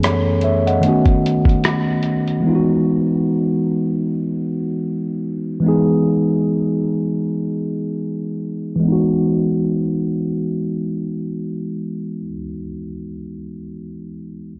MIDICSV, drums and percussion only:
0, 0, Header, 1, 2, 480
1, 0, Start_track
1, 0, Key_signature, 4, "major"
1, 0, Tempo, 800000
1, 1456, Time_signature, 4, 2, 24, 8
1, 8757, End_track
2, 0, Start_track
2, 0, Title_t, "Drums"
2, 20, Note_on_c, 9, 42, 61
2, 26, Note_on_c, 9, 37, 90
2, 80, Note_off_c, 9, 42, 0
2, 86, Note_off_c, 9, 37, 0
2, 248, Note_on_c, 9, 42, 66
2, 308, Note_off_c, 9, 42, 0
2, 404, Note_on_c, 9, 42, 49
2, 464, Note_off_c, 9, 42, 0
2, 498, Note_on_c, 9, 42, 83
2, 558, Note_off_c, 9, 42, 0
2, 633, Note_on_c, 9, 42, 35
2, 634, Note_on_c, 9, 36, 86
2, 693, Note_off_c, 9, 42, 0
2, 694, Note_off_c, 9, 36, 0
2, 756, Note_on_c, 9, 42, 71
2, 816, Note_off_c, 9, 42, 0
2, 871, Note_on_c, 9, 36, 83
2, 895, Note_on_c, 9, 42, 42
2, 931, Note_off_c, 9, 36, 0
2, 955, Note_off_c, 9, 42, 0
2, 982, Note_on_c, 9, 42, 79
2, 989, Note_on_c, 9, 37, 106
2, 1042, Note_off_c, 9, 42, 0
2, 1049, Note_off_c, 9, 37, 0
2, 1216, Note_on_c, 9, 42, 57
2, 1276, Note_off_c, 9, 42, 0
2, 1365, Note_on_c, 9, 42, 41
2, 1425, Note_off_c, 9, 42, 0
2, 8757, End_track
0, 0, End_of_file